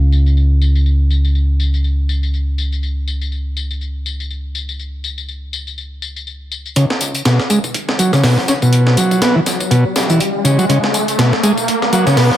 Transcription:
Already playing: picked electric bass C#2
0.12 tambourine
0.26 tambourine
0.37 tambourine
0.61 tambourine
0.75 tambourine
0.86 tambourine
1.10 tambourine
1.25 tambourine
1.35 tambourine
1.60 tambourine
1.74 tambourine
1.84 tambourine
2.09 tambourine
2.23 tambourine
2.34 tambourine
2.58 tambourine
2.72 tambourine
2.83 tambourine
3.07 tambourine
3.21 tambourine
3.32 tambourine
3.57 tambourine
3.71 tambourine
3.81 tambourine
4.06 tambourine
4.20 tambourine
4.30 tambourine
4.55 tambourine
4.69 tambourine
4.79 tambourine
5.04 tambourine
5.18 tambourine
5.29 tambourine
5.53 tambourine
5.67 tambourine
5.78 tambourine
6.02 tambourine
6.16 tambourine
6.27 tambourine
6.51 tambourine
6.66 tambourine
6.76 picked electric bass C#2, transistor combo organ C#3, kick, closed hi-hat, tambourine, riser
6.90 snare
7.01 picked electric bass C#2, closed hi-hat, tambourine
7.14 closed hi-hat, tambourine
7.25 transistor combo organ B2, snare, closed hi-hat, tambourine
7.40 snare
7.50 picked electric bass C#2, transistor combo organ G#3, closed hi-hat, tambourine
7.64 kick, tambourine
7.74 muted picked electric bass stroke, kick, closed hi-hat, tambourine
7.89 picked electric bass C#2, snare
7.99 transistor combo organ F#3, closed hi-hat, tambourine
8.13 transistor combo organ C#3, snare, tambourine
8.24 transistor combo organ B2, snare, open hi-hat, tambourine
8.38 picked electric bass G#1, snare
8.48 transistor combo organ C#4, snare, closed hi-hat, tambourine
8.62 transistor combo organ B2, kick, tambourine
8.73 closed hi-hat, tambourine
8.87 snare
8.97 picked electric bass C#2, transistor combo organ F#3, closed hi-hat, tambourine
9.11 kick, tambourine
9.22 transistor combo organ B3, snare, closed hi-hat, tambourine
9.36 transistor combo organ E3
9.46 picked electric bass C#2, snare, closed hi-hat, tambourine
9.60 kick, tambourine
9.71 transistor combo organ B2, closed hi-hat, tambourine
9.96 picked electric bass C#2, snare, closed hi-hat, tambourine
10.09 transistor combo organ E3, closed hi-hat, tambourine
10.20 closed hi-hat, tambourine
10.44 transistor combo organ C#3, kick, closed hi-hat, tambourine
10.58 transistor combo organ F#3, kick, tambourine
10.69 picked electric bass C#2, transistor combo organ C#3, kick, closed hi-hat, tambourine
10.84 snare
10.94 picked electric bass C#2, closed hi-hat, tambourine
11.08 closed hi-hat, tambourine
11.18 transistor combo organ B2, snare, closed hi-hat, tambourine
11.33 snare
11.43 picked electric bass C#2, transistor combo organ G#3, closed hi-hat, tambourine
11.58 kick, tambourine
11.68 muted picked electric bass stroke, kick, closed hi-hat, tambourine
11.82 picked electric bass C#2, snare
11.92 transistor combo organ F#3, closed hi-hat, tambourine
12.06 transistor combo organ C#3, snare, tambourine
12.17 transistor combo organ B2, snare, open hi-hat, tambourine
12.31 picked electric bass G#1, snare

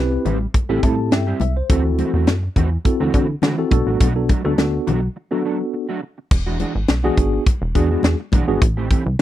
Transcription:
Already playing: analog synth bass C2, tine electric piano C4 E4 G4 B4
0.12 muted clean electric guitar stroke
0.25 analog synth bass A1, clean electric guitar G3 C4 E4 G4, closed hi-hat, low conga
0.40 muted clean electric guitar stroke
0.54 muted clean electric guitar stroke, kick, closed hi-hat, muted conga
0.69 analog synth bass A1, clean electric guitar G3 C4 E4 G4, tine electric piano C4 E4 G4 A4
0.83 analog synth bass A2, clean electric guitar G3 C4 E4 A4, tine electric piano A5, kick, closed hi-hat, muted conga
0.98 muted clean electric guitar stroke
1.11 analog synth bass G2, tine electric piano E5 G5, muted clean electric guitar stroke, snare, closed hi-hat, high conga
1.27 clean electric guitar G3 C4 E4 G4
1.40 analog synth bass C2, tine electric piano E5, muted clean electric guitar stroke, closed hi-hat, high conga
1.56 tine electric piano C5, muted clean electric guitar stroke
1.70 analog synth bass D2, clean electric guitar E3 A3 C4 F#4, tine electric piano C4 E4 F#4 A4, kick, closed hi-hat
1.85 muted clean electric guitar stroke
1.99 clean electric guitar E3 A3 C4 F#4, closed hi-hat, muted conga
2.14 analog synth bass E2, clean electric guitar E3 A3 C4 F#4
2.27 analog synth bass F#2, snare, closed hi-hat, high conga
2.43 muted clean electric guitar stroke
2.56 analog synth bass E2, clean electric guitar E3 A3 C4 F#4, kick, closed hi-hat, low conga
2.72 muted clean electric guitar stroke
2.85 tine electric piano C4 E4 F#4 A4, muted clean electric guitar stroke, kick, closed hi-hat, muted conga
3.00 analog synth bass D2, clean electric guitar E3 A3 C4 F#4
3.14 analog synth bass D3, clean electric guitar E3 A3 C4 F#4, kick, closed hi-hat, muted conga
3.29 muted clean electric guitar stroke
3.42 analog synth bass D3, clean electric guitar E3 A3 C4 F#4, snare, closed hi-hat, high conga
3.58 tine electric piano C4 E4 F#4 A4, muted clean electric guitar stroke
3.71 analog synth bass B1, tine electric piano B3 D4 F#4 A4, muted clean electric guitar stroke, kick, closed hi-hat, high conga
3.87 analog synth bass A1, clean electric guitar F#3 A3 D4 F#4
4.00 analog synth bass B1, clean electric guitar F#3 A3 D4 F#4, kick, closed hi-hat
4.15 tine electric piano B3 D4 F#4 A4, muted clean electric guitar stroke
4.29 clean electric guitar F#3 A3 D4 F#4, kick, closed hi-hat, muted conga
4.44 analog synth bass D2, clean electric guitar F#3 A3 D4 A4, tine electric piano B3 D4 F#4 A4
4.58 analog synth bass D2, tine electric piano B3 D4 F#4 A4, snare, closed hi-hat, high conga
4.73 muted clean electric guitar stroke
4.87 analog synth bass B1, clean electric guitar F#3 A3 D4 F#4, closed hi-hat, low conga
5.02 muted clean electric guitar stroke
5.16 muted clean electric guitar stroke
5.31 clean electric guitar F#3 A3 D4 F#4, tine electric piano B3 D4 F#4 A4
5.45 clean electric guitar F#3 A3 D4 A4
5.60 muted clean electric guitar stroke
5.73 muted clean electric guitar stroke
5.89 clean electric guitar F#3 A3 D4 F#4
6.02 muted clean electric guitar stroke
6.18 muted clean electric guitar stroke
6.31 analog synth bass E1, muted clean electric guitar stroke, kick, crash
6.46 clean electric guitar E3 G#3 D4 F#4
6.60 clean electric guitar E3 G#3 D4 F#4, closed hi-hat, muted conga
6.75 analog synth bass G#1, muted clean electric guitar stroke
6.88 analog synth bass B1, muted clean electric guitar stroke, snare, closed hi-hat, high conga
7.04 clean electric guitar E3 G#3 D4 F#4, tine electric piano B3 D4 F#4 G#4
7.17 analog synth bass G#1, muted clean electric guitar stroke, kick, closed hi-hat
7.33 muted clean electric guitar stroke
7.46 muted clean electric guitar stroke, kick, closed hi-hat, muted conga
7.62 analog synth bass E1, muted clean electric guitar stroke
7.75 analog synth bass E2, clean electric guitar E3 G#3 D4 F#4, tine electric piano B3 D4 F#4 G#4, kick, closed hi-hat
7.91 clean electric guitar E3 G#3 D4 F#4
8.03 analog synth bass E2, snare, closed hi-hat, high conga
8.20 muted clean electric guitar stroke
8.32 analog synth bass B1, clean electric guitar E3 G#3 D4 F#4, kick, closed hi-hat, high conga
8.47 analog synth bass G#1, clean electric guitar E3 G#3 D4 F#4, tine electric piano B3 D4 F#4 G#4
8.62 analog synth bass A1, kick, closed hi-hat
8.77 clean electric guitar E3 A3 C4 G4
8.90 clean electric guitar E3 A3 C4 G4, kick, closed hi-hat, muted conga
9.06 analog synth bass C2, muted clean electric guitar stroke

